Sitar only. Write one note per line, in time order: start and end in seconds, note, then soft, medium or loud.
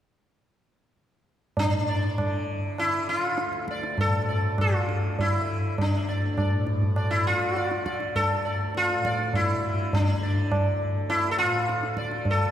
1.59 2.44 D4 medium
1.89 2.16 D5 soft
2.79 3.09 E4 medium
3.09 3.20 E4 medium
3.20 3.64 F4 medium
3.71 3.97 D5 soft
4.01 4.61 A4 medium
4.29 4.56 D5 soft
4.61 5.20 F4 medium
5.21 5.74 E4 medium
5.81 6.64 D4 medium
6.09 6.35 D5 soft
6.38 6.65 D5 soft
6.98 7.24 D5 soft
7.11 7.26 E4 medium
7.27 7.97 F4 medium
7.56 7.84 D5 soft
7.86 8.13 D5 soft
8.16 8.76 A4 medium
8.45 8.72 D5 soft
8.77 9.35 F4 medium
9.05 9.32 D5 soft
9.35 9.95 E4 medium
9.94 10.78 D4 medium
10.23 10.50 D5 soft
11.10 11.31 E4 medium
11.31 11.38 A4 medium
11.38 11.94 F4 medium
11.98 12.25 D5 soft
12.31 12.51 A4 medium